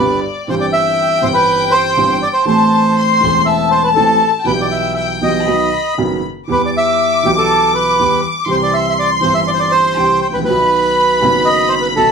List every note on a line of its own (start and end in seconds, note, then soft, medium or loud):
0.00 0.19 G1 medium
0.00 0.20 G2 medium
0.00 0.19 D3 medium
0.00 0.19 G3 soft
0.00 0.20 B3 medium
0.00 0.20 G4 medium
0.00 0.20 B4 medium
0.00 0.43 D5 medium
0.46 1.20 G1 medium
0.46 1.20 G2 medium
0.46 1.19 E3 soft
0.46 1.20 G3 medium
0.46 0.55 C5 medium
0.46 2.46 G5 medium
0.50 1.20 C4 soft
0.50 1.20 G4 medium
0.61 0.66 D5 medium
0.73 1.24 E5 medium
1.22 1.94 G1 medium
1.22 1.94 G2 medium
1.22 1.93 E3 soft
1.22 1.94 G3 medium
1.22 1.94 C4 soft
1.22 1.95 G4 medium
1.22 1.29 C5 medium
1.34 1.73 B4 medium
1.71 2.18 C5 medium
1.97 2.18 G1 medium
1.97 2.18 G2 medium
1.97 2.18 E3 medium
1.97 2.19 G3 medium
1.97 2.19 C4 medium
1.97 2.18 G4 medium
2.23 2.28 D5 medium
2.33 2.45 C5 medium
2.45 3.18 A1 medium
2.45 3.18 A2 medium
2.45 3.17 E3 medium
2.45 3.17 A3 medium
2.45 3.18 C4 medium
2.45 3.18 A4 medium
2.45 3.42 C5 medium
2.45 2.92 A5 medium
2.96 3.46 C6 medium
3.21 3.93 E1 medium
3.21 3.93 E2 medium
3.21 3.92 E3 medium
3.21 3.93 A3 soft
3.21 3.94 C4 medium
3.26 3.95 A4 medium
3.46 3.69 E5 medium
3.46 4.46 A5 medium
3.71 3.83 C5 medium
3.84 3.89 B4 medium
3.94 4.18 A1 medium
3.94 4.18 A2 medium
3.94 4.17 E3 medium
3.94 4.18 A3 medium
3.94 4.18 C4 medium
3.94 4.30 A4 medium
3.94 4.17 A4 medium
4.45 5.17 B1 medium
4.45 5.18 B2 medium
4.45 5.17 E3 soft
4.45 5.18 G3 soft
4.45 5.18 B3 medium
4.45 5.19 G4 medium
4.45 4.52 B4 medium
4.45 4.94 G5 medium
4.61 4.66 D5 medium
4.72 4.93 E5 medium
4.95 5.07 E5 medium
4.95 5.43 G5 medium
5.21 5.43 B1 medium
5.21 5.43 B2 medium
5.21 5.43 E3 soft
5.21 5.43 G3 soft
5.21 5.43 B3 soft
5.21 5.43 G4 medium
5.21 5.94 D#5 medium
5.46 5.68 B1 medium
5.46 5.69 B2 medium
5.46 5.68 D#3 medium
5.46 5.68 F#3 soft
5.46 5.68 B3 medium
5.46 5.68 F#4 medium
5.46 6.22 B5 medium
5.98 6.19 F#1 medium
5.98 6.19 F#2 medium
5.98 6.19 D#3 medium
5.98 6.19 F#3 soft
5.98 6.19 B3 soft
5.98 6.20 F#4 medium
6.47 7.21 E2 medium
6.47 7.21 E3 medium
6.47 7.20 G3 medium
6.47 7.21 B3 soft
6.47 8.44 D6 medium
6.51 7.22 G4 medium
6.51 6.62 B4 medium
6.66 6.70 D5 medium
6.77 7.27 E5 medium
7.23 7.96 B1 medium
7.23 7.95 B2 medium
7.23 7.95 E3 medium
7.23 7.96 G3 soft
7.23 7.96 B3 soft
7.23 7.31 G4 medium
7.23 7.97 G4 medium
7.38 7.72 A4 medium
7.75 8.21 B4 medium
7.99 8.20 E2 medium
7.99 8.20 E3 medium
7.99 8.20 G3 medium
7.99 8.21 B3 medium
7.99 8.21 G4 medium
8.46 9.19 C2 medium
8.46 9.19 C3 medium
8.46 9.18 E3 medium
8.46 9.19 G3 medium
8.46 9.19 C4 medium
8.46 9.97 C6 medium
8.50 9.20 G4 medium
8.50 8.57 C5 medium
8.63 8.74 D5 medium
8.73 8.86 E5 medium
8.89 8.94 E5 medium
8.99 9.10 D5 medium
9.20 9.94 G1 medium
9.20 9.93 G2 medium
9.20 9.92 E3 medium
9.20 9.93 G3 soft
9.20 9.94 C4 soft
9.20 9.94 G4 medium
9.20 9.34 C5 medium
9.34 9.40 E5 medium
9.48 9.50 D5 medium
9.54 9.60 C5 medium
9.60 9.71 D5 medium
9.71 10.20 C5 medium
9.96 10.18 C2 medium
9.96 10.19 C3 medium
9.96 10.18 E3 medium
9.96 10.18 G3 medium
9.96 10.18 C4 medium
9.96 10.19 G4 medium
9.96 10.46 G5 medium
10.22 10.27 C5 medium
10.29 10.35 G#1 soft
10.29 10.39 B4 medium
10.35 10.41 A1 soft
10.41 10.47 A#1 medium
10.41 11.48 B4 medium
10.47 11.18 B1 medium
10.47 11.18 B2 medium
10.47 11.17 D#3 medium
10.47 11.18 F#3 medium
10.47 11.19 B3 medium
10.47 11.19 F#4 medium
10.47 12.12 B5 medium
11.20 11.93 F#1 medium
11.20 11.93 F#2 medium
11.20 11.92 D#3 medium
11.20 11.93 F#3 medium
11.20 11.93 B3 medium
11.24 11.94 F#4 medium
11.45 11.69 D#5 medium
11.69 11.75 C5 medium
11.81 11.87 B4 medium
11.96 12.12 B1 medium
11.96 12.12 B2 medium
11.96 12.12 D#3 medium
11.96 12.12 F#3 medium
11.96 12.12 B3 medium
11.96 12.12 F#4 medium
11.96 12.12 A4 medium